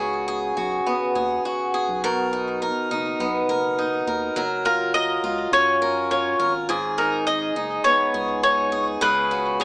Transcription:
0.00 0.53 C#2 medium
0.00 2.03 C#3 medium
0.00 0.86 B3 medium
0.00 0.56 F#4 medium
0.00 0.27 G#4 medium
0.28 1.14 G#4 medium
0.57 0.81 B1 medium
0.57 1.45 F#4 medium
0.86 2.65 B3 medium
1.15 1.39 D#2 medium
1.15 1.73 G#4 medium
1.45 2.32 F#4 medium
1.74 2.03 G#4 medium
1.88 2.72 B1 loud
2.04 4.36 B2 medium
2.04 2.61 A#4 medium
2.33 2.90 D#4 medium
2.62 3.49 A#4 medium
2.90 3.14 F#1 medium
2.90 3.77 D#4 medium
3.19 3.43 B1 medium
3.19 4.42 B3 medium
3.48 4.03 F#1 loud
3.48 4.07 A#4 medium
3.79 4.42 D#4 medium
4.07 4.31 D#2 medium
4.07 4.36 A#4 medium
4.36 5.19 F#1 medium
4.36 6.72 F#3 medium
4.36 4.93 A#4 medium
4.65 5.23 F4 medium
4.65 4.94 A#4 medium
4.94 5.81 A#4 medium
4.94 5.53 D#5 loud
5.23 5.47 C#2 medium
5.23 6.10 F4 medium
5.52 6.35 F#2 medium
5.52 6.75 C#4 medium
5.52 6.10 C#5 loud
5.82 6.38 A#4 medium
6.11 6.75 F4 medium
6.11 6.52 C#5 medium
6.39 7.52 G#1 loud
6.39 6.69 A#4 medium
6.69 9.02 G#2 loud
6.69 7.27 G#4 medium
6.98 7.55 D#4 medium
6.98 7.26 A#4 medium
7.27 8.14 G#4 medium
7.27 7.81 D#5 medium
7.56 7.80 F#1 loud
7.56 8.42 D#4 medium
7.84 9.64 B3 medium
7.84 8.39 C#5 medium
8.14 8.97 C#2 loud
8.14 8.72 G#4 medium
8.43 9.08 D#4 medium
8.43 8.84 C#5 medium
8.72 9.01 G#4 medium
9.01 9.64 C#2 medium
9.01 9.64 C#3 medium
9.01 9.59 G#4 medium
9.01 9.60 B4 medium
9.31 9.64 F#4 medium
9.60 9.64 G#4 medium
9.60 9.64 C#5 medium

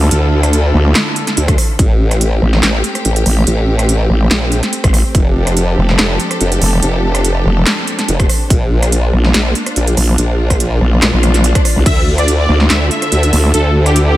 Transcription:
0.00 1.76 D3 medium
0.00 1.76 D4 medium
0.00 1.76 E4 medium
0.00 1.76 F4 medium
0.00 1.76 A4 medium
0.11 0.73 D2 loud
0.11 closed hi-hat medium
0.43 cross-stick medium
0.43 closed hi-hat medium
0.53 closed hi-hat medium
0.74 0.94 D2 loud
0.95 snare loud
0.95 clap medium
0.95 closed hi-hat medium
1.16 closed hi-hat medium
1.27 snare soft
1.27 closed hi-hat medium
1.37 1.56 D2 loud
1.37 closed hi-hat medium
1.48 kick loud
1.48 cross-stick medium
1.48 closed hi-hat medium
1.58 cross-stick soft
1.58 open hi-hat medium
1.79 2.40 A1 loud
1.79 5.11 A3 medium
1.79 8.46 C4 medium
1.79 5.11 G4 medium
1.79 kick loud
1.79 closed hi-hat medium
2.11 cross-stick medium
2.11 closed hi-hat medium
2.21 closed hi-hat medium
2.42 2.61 A1 loud
2.53 snare soft
2.63 2.82 A1 loud
2.63 snare loud
2.63 clap medium
2.63 closed hi-hat medium
2.84 closed hi-hat medium
2.95 cross-stick medium
2.95 closed hi-hat medium
3.05 3.24 A1 loud
3.05 closed hi-hat medium
3.16 closed hi-hat medium
3.26 3.45 A1 loud
3.26 open hi-hat medium
3.47 4.08 A1 loud
3.47 closed hi-hat medium
3.79 cross-stick medium
3.79 closed hi-hat medium
3.89 closed hi-hat medium
4.10 4.29 A1 loud
4.31 4.61 A#1 loud
4.31 snare loud
4.31 clap medium
4.31 closed hi-hat medium
4.52 closed hi-hat medium
4.63 snare soft
4.63 closed hi-hat soft
4.73 closed hi-hat medium
4.84 5.03 A1 medium
4.84 kick loud
4.84 cross-stick medium
4.84 closed hi-hat medium
4.94 cross-stick medium
4.94 open hi-hat medium
5.15 5.76 F1 loud
5.15 8.47 F3 medium
5.15 14.17 D4 medium
5.15 8.47 G4 medium
5.15 8.47 A4 medium
5.15 kick loud
5.15 closed hi-hat medium
5.47 cross-stick medium
5.47 closed hi-hat medium
5.57 closed hi-hat medium
5.78 5.97 F1 loud
5.89 snare soft
5.99 6.18 F1 loud
5.99 snare loud
5.99 clap medium
5.99 closed hi-hat medium
6.20 closed hi-hat medium
6.31 cross-stick medium
6.31 closed hi-hat medium
6.41 6.60 F1 loud
6.41 closed hi-hat medium
6.52 closed hi-hat medium
6.62 6.81 F1 loud
6.62 open hi-hat medium
6.83 7.44 F1 loud
6.83 closed hi-hat medium
7.15 cross-stick medium
7.15 closed hi-hat medium
7.25 closed hi-hat medium
7.45 7.65 F1 loud
7.67 snare loud
7.67 clap medium
7.67 closed hi-hat medium
7.87 closed hi-hat medium
7.99 snare soft
7.99 closed hi-hat medium
8.08 8.28 F1 loud
8.08 closed hi-hat medium
8.20 kick loud
8.20 cross-stick medium
8.20 closed hi-hat medium
8.29 cross-stick medium
8.29 open hi-hat medium
8.50 9.12 A#1 loud
8.50 11.83 A#3 medium
8.50 14.17 F4 medium
8.50 kick loud
8.50 closed hi-hat medium
8.83 cross-stick medium
8.83 closed hi-hat medium
8.92 closed hi-hat medium
9.13 9.33 A#1 loud
9.24 snare soft
9.34 9.54 A#1 loud
9.34 snare loud
9.34 clap medium
9.34 closed hi-hat medium
9.55 closed hi-hat medium
9.66 cross-stick medium
9.66 closed hi-hat medium
9.76 9.96 A#1 loud
9.76 closed hi-hat medium
9.87 closed hi-hat medium
9.97 10.17 A#1 loud
9.97 open hi-hat loud
10.18 10.80 A#1 loud
10.18 closed hi-hat medium
10.50 kick medium
10.50 cross-stick medium
10.50 closed hi-hat medium
10.60 closed hi-hat medium
10.81 11.01 A#1 loud
11.02 11.11 A#1 loud
11.02 snare loud
11.02 clap medium
11.02 closed hi-hat medium
11.02 swell medium
11.13 11.53 A#1 loud
11.23 cross-stick medium
11.23 closed hi-hat medium
11.34 snare soft
11.34 closed hi-hat medium
11.44 closed hi-hat medium
11.55 kick loud
11.55 cross-stick medium
11.55 closed hi-hat medium
11.65 cross-stick medium
11.65 open hi-hat medium
11.76 11.84 C2 loud
11.86 12.47 D2 loud
11.86 14.17 D3 medium
11.86 14.17 E4 medium
11.86 14.17 A4 medium
11.86 12.03 E5 loud
11.86 kick loud
11.86 closed hi-hat medium
11.86 crash medium
12.18 12.29 D5 medium
12.18 cross-stick soft
12.18 closed hi-hat medium
12.28 closed hi-hat medium
12.39 12.55 D5 medium
12.49 12.68 D2 loud
12.60 snare soft
12.70 12.89 D2 loud
12.70 12.82 E5 medium
12.70 snare loud
12.70 clap loud
12.70 closed hi-hat medium
12.91 13.46 E5 loud
12.91 closed hi-hat medium
13.02 cross-stick soft
13.02 closed hi-hat medium
13.12 13.31 D2 loud
13.12 closed hi-hat medium
13.23 closed hi-hat medium
13.33 13.52 D2 loud
13.33 open hi-hat medium
13.54 14.15 D2 loud
13.54 13.71 A4 loud
13.54 closed hi-hat medium
13.86 13.96 G4 medium
13.86 cross-stick medium
13.86 closed hi-hat medium
13.96 closed hi-hat medium
14.07 14.17 G4 loud

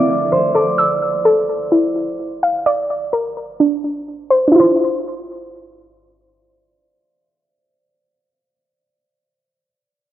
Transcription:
0.00 0.79 C4 medium
0.00 0.78 E4 medium
0.00 0.32 A#4 loud
0.00 0.54 D5 medium
0.00 0.87 E5 medium
0.32 2.30 C5 medium
0.54 0.79 A4 medium
0.54 2.39 D5 medium
0.78 2.19 E6 medium
1.25 2.66 A4 medium
1.72 2.66 E4 medium
2.43 2.66 F5 medium
2.66 4.07 D5 loud
3.13 4.54 A#4 medium
3.60 4.46 D4 medium
4.30 4.54 C5 medium
4.47 7.55 D4 medium
4.52 7.59 E4 medium
4.56 7.63 F4 medium
4.60 7.67 C5 medium

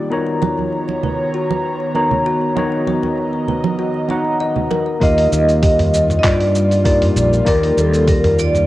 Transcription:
0.00 0.13 A#3 medium
0.00 0.11 D#4 medium
0.00 0.10 F4 medium
0.00 0.13 F4 medium
0.00 0.14 G4 medium
0.00 0.14 D5 medium
0.10 4.98 D#3 medium
0.10 1.91 B3 medium
0.10 4.97 B3 medium
0.10 1.92 D#4 medium
0.10 1.92 F#4 medium
0.10 0.29 A#4 medium
0.10 2.54 C#5 medium
0.10 1.93 C#5 medium
0.10 4.97 A#5 medium
0.10 1.92 A#5 medium
0.42 0.70 C#5 medium
0.42 muted conga medium
0.42 high conga medium
0.59 high conga medium
0.89 muted conga soft
1.03 1.31 B4 medium
1.03 low conga medium
1.34 1.62 F#4 medium
1.51 muted conga medium
1.95 2.53 B3 medium
1.95 2.53 D#4 medium
1.95 2.53 F#4 medium
1.95 2.25 A#4 medium
1.95 2.53 C#5 medium
1.95 2.53 A#5 medium
1.95 muted conga soft
2.11 low conga medium
2.26 2.55 F#4 loud
2.55 4.06 B3 medium
2.55 4.06 D#4 medium
2.55 4.07 F#4 medium
2.55 2.74 A#4 medium
2.55 4.08 C#5 medium
2.55 4.99 D#5 medium
2.55 4.07 A#5 medium
2.55 muted conga medium
2.87 3.15 C#5 medium
2.87 high conga medium
3.03 muted conga soft
3.03 high conga soft
3.48 3.76 B4 medium
3.48 low conga medium
3.64 muted conga medium
3.64 high conga medium
3.79 4.07 F#4 medium
4.08 4.97 B3 medium
4.08 4.98 D#4 medium
4.08 4.98 F#4 medium
4.08 4.27 C#5 medium
4.08 4.99 F#5 medium
4.08 4.99 A#5 medium
4.08 muted conga soft
4.40 4.68 D#5 medium
4.56 low conga medium
4.71 4.99 A#4 medium
4.71 muted conga medium
5.00 5.26 D#2 medium
5.00 8.67 G3 medium
5.00 6.81 A#3 medium
5.00 6.81 D#4 medium
5.00 8.67 F4 medium
5.00 6.82 F4 medium
5.00 6.82 G4 medium
5.00 5.19 A#4 loud
5.00 6.18 D#5 loud
5.00 6.83 F5 loud
5.00 kick loud
5.00 open hi-hat medium
5.00 cabasa soft
5.18 open hi-hat soft
5.32 6.19 D#2 medium
5.32 cabasa medium
5.49 open hi-hat soft
5.49 cabasa soft
5.63 5.92 G4 medium
5.63 kick loud
5.63 open hi-hat medium
5.63 cabasa soft
5.79 mid tom medium
5.79 open hi-hat soft
5.94 cabasa medium
6.10 mid tom medium
6.10 cabasa soft
6.19 6.25 D#5 medium
6.24 7.11 G2 medium
6.24 6.53 F4 medium
6.24 7.51 D5 loud
6.24 kick loud
6.24 clap medium
6.24 open hi-hat medium
6.24 cabasa soft
6.40 open hi-hat soft
6.55 cabasa medium
6.71 open hi-hat soft
6.71 cabasa soft
6.85 7.43 A#3 medium
6.85 7.43 D#4 medium
6.85 7.43 F4 medium
6.85 7.43 G4 medium
6.85 7.14 A#4 medium
6.85 7.44 D5 medium
6.85 kick loud
6.85 open hi-hat medium
6.85 cabasa soft
7.02 mid tom medium
7.02 open hi-hat soft
7.16 7.40 A#1 loud
7.16 cabasa medium
7.33 cabasa soft
7.45 7.71 D#2 medium
7.45 8.67 A#3 medium
7.45 8.67 D#4 medium
7.45 8.67 F4 medium
7.45 8.67 G4 medium
7.45 7.64 A#4 medium
7.45 7.79 A#4 medium
7.45 8.67 D5 loud
7.45 kick loud
7.45 open hi-hat medium
7.45 cabasa soft
7.63 open hi-hat soft
7.77 8.67 D#2 medium
7.77 8.09 A4 medium
7.77 cabasa medium
7.93 open hi-hat soft
7.93 cabasa soft
8.07 8.37 G4 medium
8.07 8.40 A#4 medium
8.07 kick loud
8.07 open hi-hat medium
8.07 cabasa soft
8.24 mid tom medium
8.24 open hi-hat soft
8.39 8.67 D5 medium
8.39 cabasa medium
8.55 mid tom medium
8.55 cabasa soft

